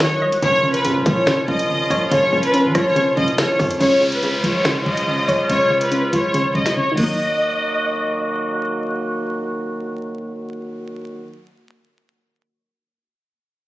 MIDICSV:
0, 0, Header, 1, 7, 480
1, 0, Start_track
1, 0, Key_signature, -6, "minor"
1, 0, Tempo, 422535
1, 483, Time_signature, 4, 2, 24, 8
1, 15538, End_track
2, 0, Start_track
2, 0, Title_t, "Violin section"
2, 0, Program_c, 0, 48
2, 2, Note_on_c, 0, 73, 93
2, 183, Note_off_c, 0, 73, 0
2, 482, Note_on_c, 0, 73, 116
2, 821, Note_off_c, 0, 73, 0
2, 842, Note_on_c, 0, 71, 86
2, 1181, Note_off_c, 0, 71, 0
2, 1201, Note_on_c, 0, 73, 88
2, 1653, Note_off_c, 0, 73, 0
2, 1682, Note_on_c, 0, 75, 81
2, 2359, Note_off_c, 0, 75, 0
2, 2400, Note_on_c, 0, 73, 102
2, 2740, Note_off_c, 0, 73, 0
2, 2761, Note_on_c, 0, 71, 88
2, 3100, Note_off_c, 0, 71, 0
2, 3122, Note_on_c, 0, 73, 93
2, 3574, Note_off_c, 0, 73, 0
2, 3600, Note_on_c, 0, 75, 78
2, 3782, Note_off_c, 0, 75, 0
2, 3841, Note_on_c, 0, 73, 86
2, 4023, Note_off_c, 0, 73, 0
2, 4321, Note_on_c, 0, 73, 99
2, 4660, Note_off_c, 0, 73, 0
2, 4683, Note_on_c, 0, 71, 83
2, 5021, Note_off_c, 0, 71, 0
2, 5041, Note_on_c, 0, 73, 83
2, 5493, Note_off_c, 0, 73, 0
2, 5522, Note_on_c, 0, 75, 73
2, 6199, Note_off_c, 0, 75, 0
2, 6241, Note_on_c, 0, 73, 94
2, 6580, Note_off_c, 0, 73, 0
2, 6603, Note_on_c, 0, 71, 80
2, 6941, Note_off_c, 0, 71, 0
2, 6963, Note_on_c, 0, 73, 88
2, 7414, Note_off_c, 0, 73, 0
2, 7444, Note_on_c, 0, 75, 76
2, 7624, Note_off_c, 0, 75, 0
2, 7683, Note_on_c, 0, 73, 85
2, 7864, Note_off_c, 0, 73, 0
2, 7923, Note_on_c, 0, 75, 91
2, 9557, Note_off_c, 0, 75, 0
2, 15538, End_track
3, 0, Start_track
3, 0, Title_t, "Woodwind section"
3, 0, Program_c, 1, 71
3, 0, Note_on_c, 1, 51, 83
3, 0, Note_on_c, 1, 54, 80
3, 0, Note_on_c, 1, 59, 81
3, 0, Note_on_c, 1, 66, 93
3, 444, Note_off_c, 1, 51, 0
3, 444, Note_off_c, 1, 54, 0
3, 444, Note_off_c, 1, 59, 0
3, 444, Note_off_c, 1, 66, 0
3, 482, Note_on_c, 1, 46, 82
3, 482, Note_on_c, 1, 53, 80
3, 482, Note_on_c, 1, 65, 97
3, 483, Note_on_c, 1, 49, 90
3, 4284, Note_off_c, 1, 46, 0
3, 4284, Note_off_c, 1, 49, 0
3, 4284, Note_off_c, 1, 53, 0
3, 4284, Note_off_c, 1, 65, 0
3, 4322, Note_on_c, 1, 53, 75
3, 4323, Note_on_c, 1, 49, 85
3, 4323, Note_on_c, 1, 56, 75
3, 4323, Note_on_c, 1, 65, 93
3, 7729, Note_off_c, 1, 49, 0
3, 7729, Note_off_c, 1, 53, 0
3, 7729, Note_off_c, 1, 56, 0
3, 7729, Note_off_c, 1, 65, 0
3, 7922, Note_on_c, 1, 54, 71
3, 7922, Note_on_c, 1, 58, 71
3, 7922, Note_on_c, 1, 66, 85
3, 7923, Note_on_c, 1, 51, 80
3, 12866, Note_off_c, 1, 51, 0
3, 12866, Note_off_c, 1, 54, 0
3, 12866, Note_off_c, 1, 58, 0
3, 12866, Note_off_c, 1, 66, 0
3, 15538, End_track
4, 0, Start_track
4, 0, Title_t, "Synth pluck"
4, 0, Program_c, 2, 84
4, 0, Note_on_c, 2, 54, 86
4, 3, Note_on_c, 2, 51, 82
4, 246, Note_on_c, 2, 75, 86
4, 481, Note_off_c, 2, 54, 0
4, 483, Note_off_c, 2, 51, 0
4, 484, Note_off_c, 2, 75, 0
4, 486, Note_on_c, 2, 49, 103
4, 707, Note_off_c, 2, 49, 0
4, 720, Note_on_c, 2, 49, 80
4, 950, Note_off_c, 2, 49, 0
4, 964, Note_on_c, 2, 49, 79
4, 1206, Note_on_c, 2, 53, 78
4, 1428, Note_off_c, 2, 49, 0
4, 1442, Note_on_c, 2, 49, 97
4, 1669, Note_off_c, 2, 49, 0
4, 1683, Note_on_c, 2, 49, 80
4, 1911, Note_off_c, 2, 49, 0
4, 1925, Note_on_c, 2, 49, 89
4, 2163, Note_on_c, 2, 73, 97
4, 2390, Note_off_c, 2, 49, 0
4, 2404, Note_off_c, 2, 53, 0
4, 2404, Note_on_c, 2, 49, 96
4, 2634, Note_off_c, 2, 49, 0
4, 2648, Note_on_c, 2, 49, 83
4, 2868, Note_off_c, 2, 49, 0
4, 2881, Note_on_c, 2, 49, 88
4, 3120, Note_on_c, 2, 53, 78
4, 3344, Note_off_c, 2, 49, 0
4, 3358, Note_on_c, 2, 49, 104
4, 3363, Note_off_c, 2, 73, 0
4, 3592, Note_off_c, 2, 49, 0
4, 3606, Note_on_c, 2, 49, 85
4, 3829, Note_off_c, 2, 49, 0
4, 3843, Note_on_c, 2, 49, 81
4, 4081, Note_on_c, 2, 73, 96
4, 4307, Note_off_c, 2, 49, 0
4, 4320, Note_on_c, 2, 49, 105
4, 4321, Note_off_c, 2, 53, 0
4, 4322, Note_off_c, 2, 73, 0
4, 4544, Note_off_c, 2, 49, 0
4, 4557, Note_on_c, 2, 49, 82
4, 4793, Note_off_c, 2, 49, 0
4, 4807, Note_on_c, 2, 49, 84
4, 5038, Note_on_c, 2, 53, 79
4, 5271, Note_off_c, 2, 49, 0
4, 5284, Note_on_c, 2, 49, 98
4, 5504, Note_off_c, 2, 49, 0
4, 5518, Note_on_c, 2, 49, 83
4, 5755, Note_off_c, 2, 49, 0
4, 5768, Note_on_c, 2, 49, 78
4, 5998, Note_on_c, 2, 73, 89
4, 6228, Note_off_c, 2, 49, 0
4, 6240, Note_off_c, 2, 53, 0
4, 6242, Note_on_c, 2, 49, 97
4, 6464, Note_off_c, 2, 49, 0
4, 6477, Note_on_c, 2, 49, 77
4, 6702, Note_off_c, 2, 49, 0
4, 6716, Note_on_c, 2, 49, 84
4, 6962, Note_on_c, 2, 53, 86
4, 7191, Note_off_c, 2, 49, 0
4, 7200, Note_off_c, 2, 73, 0
4, 7205, Note_on_c, 2, 49, 89
4, 7423, Note_off_c, 2, 49, 0
4, 7437, Note_on_c, 2, 49, 81
4, 7674, Note_off_c, 2, 49, 0
4, 7687, Note_on_c, 2, 49, 82
4, 7855, Note_on_c, 2, 51, 84
4, 7900, Note_on_c, 2, 54, 75
4, 7922, Note_off_c, 2, 53, 0
4, 7925, Note_off_c, 2, 49, 0
4, 7946, Note_on_c, 2, 58, 77
4, 7991, Note_on_c, 2, 63, 91
4, 13236, Note_off_c, 2, 51, 0
4, 13281, Note_off_c, 2, 54, 0
4, 13326, Note_off_c, 2, 58, 0
4, 13372, Note_off_c, 2, 63, 0
4, 15538, End_track
5, 0, Start_track
5, 0, Title_t, "808-style bass"
5, 0, Program_c, 3, 38
5, 0, Note_on_c, 3, 35, 108
5, 243, Note_on_c, 3, 37, 98
5, 260, Note_off_c, 3, 35, 0
5, 362, Note_on_c, 3, 35, 98
5, 379, Note_off_c, 3, 37, 0
5, 476, Note_off_c, 3, 35, 0
5, 483, Note_on_c, 3, 34, 106
5, 962, Note_on_c, 3, 49, 101
5, 979, Note_off_c, 3, 34, 0
5, 1082, Note_on_c, 3, 34, 102
5, 1099, Note_off_c, 3, 49, 0
5, 1196, Note_off_c, 3, 34, 0
5, 1203, Note_on_c, 3, 46, 107
5, 1433, Note_off_c, 3, 46, 0
5, 1683, Note_on_c, 3, 34, 109
5, 1923, Note_on_c, 3, 32, 97
5, 1940, Note_off_c, 3, 34, 0
5, 2043, Note_on_c, 3, 34, 101
5, 2060, Note_off_c, 3, 32, 0
5, 2157, Note_off_c, 3, 34, 0
5, 2163, Note_on_c, 3, 34, 99
5, 2393, Note_off_c, 3, 34, 0
5, 2403, Note_on_c, 3, 34, 115
5, 2633, Note_off_c, 3, 34, 0
5, 2642, Note_on_c, 3, 34, 111
5, 3002, Note_on_c, 3, 53, 96
5, 3019, Note_off_c, 3, 34, 0
5, 3116, Note_off_c, 3, 53, 0
5, 3123, Note_on_c, 3, 34, 108
5, 3584, Note_off_c, 3, 34, 0
5, 3603, Note_on_c, 3, 34, 104
5, 4063, Note_off_c, 3, 34, 0
5, 4083, Note_on_c, 3, 41, 102
5, 4313, Note_off_c, 3, 41, 0
5, 15538, End_track
6, 0, Start_track
6, 0, Title_t, "Downlifter"
6, 0, Program_c, 4, 103
6, 4323, Note_on_c, 4, 60, 85
6, 8163, Note_off_c, 4, 60, 0
6, 15538, End_track
7, 0, Start_track
7, 0, Title_t, "Drums"
7, 2, Note_on_c, 9, 38, 127
7, 4, Note_on_c, 9, 26, 98
7, 116, Note_off_c, 9, 38, 0
7, 118, Note_off_c, 9, 26, 0
7, 368, Note_on_c, 9, 42, 87
7, 481, Note_off_c, 9, 42, 0
7, 482, Note_on_c, 9, 42, 84
7, 483, Note_on_c, 9, 36, 118
7, 596, Note_off_c, 9, 36, 0
7, 596, Note_off_c, 9, 42, 0
7, 840, Note_on_c, 9, 42, 81
7, 954, Note_off_c, 9, 42, 0
7, 962, Note_on_c, 9, 42, 101
7, 1075, Note_off_c, 9, 42, 0
7, 1203, Note_on_c, 9, 36, 103
7, 1204, Note_on_c, 9, 42, 87
7, 1316, Note_off_c, 9, 36, 0
7, 1317, Note_off_c, 9, 42, 0
7, 1442, Note_on_c, 9, 38, 127
7, 1444, Note_on_c, 9, 26, 101
7, 1556, Note_off_c, 9, 38, 0
7, 1557, Note_off_c, 9, 26, 0
7, 1683, Note_on_c, 9, 36, 101
7, 1796, Note_off_c, 9, 36, 0
7, 1809, Note_on_c, 9, 42, 96
7, 1923, Note_off_c, 9, 42, 0
7, 2163, Note_on_c, 9, 36, 102
7, 2168, Note_on_c, 9, 42, 78
7, 2276, Note_off_c, 9, 36, 0
7, 2281, Note_off_c, 9, 42, 0
7, 2402, Note_on_c, 9, 42, 83
7, 2403, Note_on_c, 9, 36, 120
7, 2516, Note_off_c, 9, 36, 0
7, 2516, Note_off_c, 9, 42, 0
7, 2760, Note_on_c, 9, 42, 83
7, 2874, Note_off_c, 9, 42, 0
7, 2882, Note_on_c, 9, 42, 97
7, 2996, Note_off_c, 9, 42, 0
7, 3123, Note_on_c, 9, 36, 101
7, 3123, Note_on_c, 9, 37, 102
7, 3124, Note_on_c, 9, 42, 89
7, 3237, Note_off_c, 9, 36, 0
7, 3237, Note_off_c, 9, 37, 0
7, 3238, Note_off_c, 9, 42, 0
7, 3365, Note_on_c, 9, 42, 83
7, 3479, Note_off_c, 9, 42, 0
7, 3603, Note_on_c, 9, 36, 98
7, 3717, Note_off_c, 9, 36, 0
7, 3723, Note_on_c, 9, 42, 52
7, 3837, Note_off_c, 9, 42, 0
7, 3842, Note_on_c, 9, 42, 88
7, 3843, Note_on_c, 9, 38, 127
7, 3844, Note_on_c, 9, 26, 101
7, 3956, Note_off_c, 9, 38, 0
7, 3956, Note_off_c, 9, 42, 0
7, 3958, Note_off_c, 9, 26, 0
7, 4083, Note_on_c, 9, 36, 101
7, 4089, Note_on_c, 9, 46, 58
7, 4197, Note_off_c, 9, 36, 0
7, 4203, Note_off_c, 9, 46, 0
7, 4209, Note_on_c, 9, 42, 89
7, 4322, Note_off_c, 9, 42, 0
7, 4323, Note_on_c, 9, 36, 113
7, 4323, Note_on_c, 9, 42, 79
7, 4437, Note_off_c, 9, 36, 0
7, 4437, Note_off_c, 9, 42, 0
7, 4681, Note_on_c, 9, 42, 82
7, 4794, Note_off_c, 9, 42, 0
7, 4802, Note_on_c, 9, 42, 91
7, 4916, Note_off_c, 9, 42, 0
7, 5043, Note_on_c, 9, 36, 94
7, 5044, Note_on_c, 9, 42, 81
7, 5157, Note_off_c, 9, 36, 0
7, 5158, Note_off_c, 9, 42, 0
7, 5283, Note_on_c, 9, 38, 118
7, 5285, Note_on_c, 9, 26, 98
7, 5396, Note_off_c, 9, 38, 0
7, 5398, Note_off_c, 9, 26, 0
7, 5523, Note_on_c, 9, 36, 99
7, 5637, Note_off_c, 9, 36, 0
7, 5650, Note_on_c, 9, 42, 88
7, 5763, Note_off_c, 9, 42, 0
7, 6003, Note_on_c, 9, 36, 99
7, 6008, Note_on_c, 9, 42, 76
7, 6117, Note_off_c, 9, 36, 0
7, 6122, Note_off_c, 9, 42, 0
7, 6242, Note_on_c, 9, 42, 80
7, 6243, Note_on_c, 9, 36, 112
7, 6356, Note_off_c, 9, 36, 0
7, 6356, Note_off_c, 9, 42, 0
7, 6600, Note_on_c, 9, 42, 80
7, 6713, Note_off_c, 9, 42, 0
7, 6721, Note_on_c, 9, 42, 92
7, 6835, Note_off_c, 9, 42, 0
7, 6963, Note_on_c, 9, 36, 95
7, 6963, Note_on_c, 9, 42, 82
7, 7076, Note_off_c, 9, 36, 0
7, 7077, Note_off_c, 9, 42, 0
7, 7204, Note_on_c, 9, 42, 81
7, 7318, Note_off_c, 9, 42, 0
7, 7443, Note_on_c, 9, 36, 93
7, 7556, Note_off_c, 9, 36, 0
7, 7562, Note_on_c, 9, 38, 65
7, 7569, Note_on_c, 9, 42, 79
7, 7676, Note_off_c, 9, 38, 0
7, 7683, Note_off_c, 9, 42, 0
7, 7922, Note_on_c, 9, 36, 104
7, 7922, Note_on_c, 9, 49, 88
7, 8035, Note_off_c, 9, 49, 0
7, 8036, Note_off_c, 9, 36, 0
7, 15538, End_track
0, 0, End_of_file